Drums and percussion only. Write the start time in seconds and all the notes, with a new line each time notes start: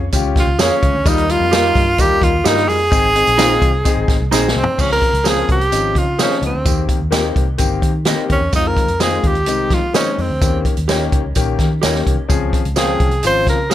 0.12 kick, closed hi-hat, tambourine
0.36 kick, snare, closed hi-hat
0.59 snare, closed hi-hat, tambourine
0.83 kick, closed hi-hat
1.06 kick, closed hi-hat, tambourine
1.18 closed hi-hat
1.29 closed hi-hat
1.53 snare, closed hi-hat, tambourine
1.75 kick, closed hi-hat
1.98 kick, closed hi-hat, tambourine
2.22 kick, closed hi-hat
2.45 snare, closed hi-hat, tambourine
2.57 snare
2.69 open hi-hat
2.92 kick, closed hi-hat, tambourine
3.16 closed hi-hat
3.27 closed hi-hat
3.39 snare, closed hi-hat, tambourine
3.62 kick, closed hi-hat
3.85 kick, closed hi-hat, tambourine
4.08 kick, snare, closed hi-hat
4.32 snare, tambourine
4.48 snare
4.64 floor tom
4.79 kick, crash, tambourine
5.02 kick, closed hi-hat
5.14 closed hi-hat
5.25 snare, closed hi-hat, tambourine
5.49 kick, closed hi-hat
5.61 closed hi-hat
5.72 closed hi-hat, tambourine
5.95 kick, closed hi-hat
6.19 snare, closed hi-hat, tambourine
6.30 snare
6.42 closed hi-hat
6.65 kick, closed hi-hat, tambourine
6.89 kick, closed hi-hat
7.12 snare, closed hi-hat, tambourine
7.36 kick, closed hi-hat
7.58 kick, closed hi-hat, tambourine
7.82 kick, closed hi-hat
8.05 snare, closed hi-hat, tambourine
8.30 kick, closed hi-hat
8.52 kick, closed hi-hat, tambourine
8.77 kick, closed hi-hat
8.88 closed hi-hat
9.00 snare, closed hi-hat, tambourine
9.24 kick, closed hi-hat
9.35 closed hi-hat
9.46 closed hi-hat, tambourine
9.70 kick, snare, closed hi-hat
9.94 snare, closed hi-hat, tambourine
10.18 open hi-hat
10.41 kick, closed hi-hat, tambourine
10.65 kick, closed hi-hat
10.77 closed hi-hat
10.89 snare, closed hi-hat, tambourine
11.12 kick, closed hi-hat
11.35 kick, closed hi-hat, tambourine
11.59 kick, snare, closed hi-hat
11.82 snare, closed hi-hat, tambourine
11.95 snare
12.07 kick, closed hi-hat
12.30 kick, closed hi-hat, tambourine
12.53 kick, closed hi-hat
12.65 closed hi-hat
12.76 snare, closed hi-hat, tambourine
13.00 kick, closed hi-hat
13.11 closed hi-hat
13.23 closed hi-hat, tambourine
13.47 kick, snare, closed hi-hat
13.71 snare, closed hi-hat, tambourine